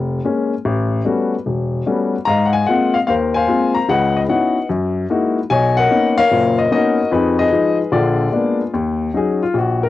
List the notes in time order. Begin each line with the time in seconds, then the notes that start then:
Already playing: F1
0.25 G#3 A#3 C#4
0.65 A1
1.05 G3 A3 B3 C#4 F#4
1.46 E1
1.86 G3 A3 B3 C#4 F#4
2.25 G#2 D#5 F5 A#5
2.46 F#5
2.53 G#5
2.66 G#3 A#3 C4 F4 F#5
2.94 F5
3.07 D#2 A#4 C5 F5
3.34 C5 F5 G#5
3.47 G#3 A#3 C4 F4
3.75 A#5
3.89 C#2 C#3 B4 D#5 F#5
4.17 D#5
4.29 B3 C#4 D#4 E4 F#4 B4 D#5 F#5
4.69 F#2
5.10 G#3 A#3 D#4 E4 F#4
5.50 B1 C#5 D#5 G#5
5.77 A#4 D#5 F#5
5.91 A#3 B3 C#4 D#4
6.18 A#4 C#5 F5
6.31 F#1 A#2
6.59 D#5
6.71 A#3 B3 C#4 D#4 F#4 A#4 D#5
7.11 F2 D#4 G#4 B4
7.39 G#4 B4 D#5
7.52 F3 G#3 D#4
7.92 A#1 D3 F4 G#4 D5
8.32 G#3 A#3 B3 D4
8.74 D#2
9.14 F#3 C#4 D#4 G#4
9.43 F4
9.54 A#1
9.59 F#4
9.83 A#4